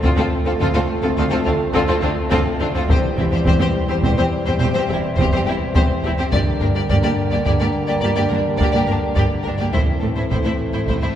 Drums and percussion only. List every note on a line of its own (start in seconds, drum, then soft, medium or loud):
0.04 taiko medium
0.61 taiko medium
1.75 taiko medium
2.33 taiko medium
2.90 taiko medium
3.47 taiko medium
4.04 taiko medium
4.90 taiko mid medium
5.18 taiko medium
5.75 taiko medium
6.33 taiko medium
6.90 taiko medium
7.46 taiko medium
8.32 taiko mid medium
8.61 taiko medium
9.17 taiko medium
9.74 taiko medium
10.31 taiko medium
10.89 taiko medium